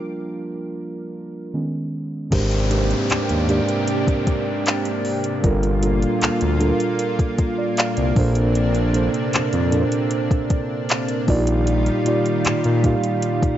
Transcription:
Already playing: F3 G3 A#3 D4 F4 A#4
1.54 D#3 G#3 B3 C#4
2.30 G#1 G#2 C3 G#3 A#3 D4 G4 A#4 C5, kick, closed hi-hat, crash, downlifter
2.51 closed hi-hat
2.69 G#2 G#3 D4 G4 A#4 B4, closed hi-hat
2.79 C5
2.91 closed hi-hat
3.10 D#2, clap, closed hi-hat
3.29 D#2, closed hi-hat
3.47 G#2 G#3 D4 G4 A#4 D5, closed hi-hat
3.69 closed hi-hat
3.88 closed hi-hat
4.07 kick, closed hi-hat
4.27 kick, closed hi-hat
4.66 clap, closed hi-hat
4.85 closed hi-hat
5.05 open hi-hat
5.24 closed hi-hat
5.42 G1 A#2 G3 A#3 D4 F4 A4 A#4, kick, closed hi-hat
5.63 closed hi-hat
5.81 G3 D4 F4 A4 A#4, closed hi-hat
6.02 closed hi-hat
6.21 D2, clap, closed hi-hat
6.41 D2, closed hi-hat
6.59 G3 D4 F4 A4 A#4, closed hi-hat
6.80 closed hi-hat
6.99 closed hi-hat
7.19 kick, closed hi-hat
7.38 kick, closed hi-hat
7.58 A#4 D5
7.77 D5 F5, clap, closed hi-hat
7.97 C2 A#4 D5, closed hi-hat
8.15 A#1 A#2 C3 A#3 D4 A4 C5, kick, open hi-hat
8.35 closed hi-hat
8.55 closed hi-hat
8.75 closed hi-hat
8.93 A#2 A#3 D4 A4 C5, closed hi-hat
9.14 closed hi-hat
9.33 F2, clap, closed hi-hat
9.53 F2, closed hi-hat
9.71 A#2 A#3 D4 A4 A#4, closed hi-hat
9.80 C5
9.92 closed hi-hat
10.11 closed hi-hat
10.31 kick, closed hi-hat
10.50 kick, closed hi-hat
10.89 clap, closed hi-hat
11.09 closed hi-hat
11.27 A#1 A#2 D#3 G3 A#3 D#4 F4 F#4 D5, kick, open hi-hat
11.36 G4
11.47 closed hi-hat
11.67 closed hi-hat
11.86 closed hi-hat
12.04 A#2 A#3 D#4 F4 G4 D5, closed hi-hat
12.26 closed hi-hat
12.45 A#2, clap, closed hi-hat
12.64 A#2, closed hi-hat
12.82 A#2 A#3 D#4 F4 G4 F5, kick, closed hi-hat
13.04 closed hi-hat
13.22 closed hi-hat, reverse cymbal
13.42 kick, closed hi-hat

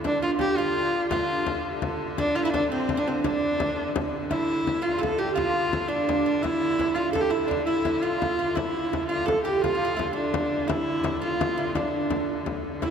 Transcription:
0.04 D3 D4, frame drum
0.22 F4
0.39 G4, frame drum
0.57 F4
1.10 F4, frame drum
1.46 frame drum
1.82 frame drum
2.18 D4, frame drum
2.35 F4
2.44 E4
2.52 D4, frame drum
2.71 C4
2.89 frame drum
2.97 D4
3.08 C4
3.24 D4, frame drum
3.60 frame drum
3.96 frame drum
4.29 D3 E4, frame drum
4.49 frame drum
4.67 frame drum
4.82 F4, frame drum
4.99 A4
5.03 frame drum
5.18 G4, frame drum
5.35 F4, frame drum
5.56 frame drum
5.73 frame drum
5.88 D4, frame drum
6.09 frame drum
6.26 D4, frame drum
6.42 E4, frame drum
6.62 frame drum
6.79 E4, frame drum
6.95 F4, frame drum
7.12 A4, frame drum
7.21 G4
7.30 E4, frame drum
7.47 D4
7.51 frame drum
7.65 E4
7.85 E4, frame drum
8.02 F4
8.22 frame drum
8.39 F4
8.55 D3 E4, frame drum
8.75 frame drum
8.93 frame drum
9.08 F4, frame drum
9.26 A4, frame drum
9.44 G4, frame drum
9.61 F4, frame drum
9.75 F4
9.81 F4, frame drum
9.97 E4, frame drum
10.13 D4, frame drum
10.34 frame drum
10.53 frame drum
10.68 E4, frame drum
10.88 frame drum
11.04 E4, frame drum
11.22 F4, frame drum
11.41 frame drum
11.57 E4, frame drum
11.75 D4, frame drum
11.93 frame drum
12.10 frame drum
12.46 frame drum
12.65 frame drum
12.81 D3 E4, frame drum

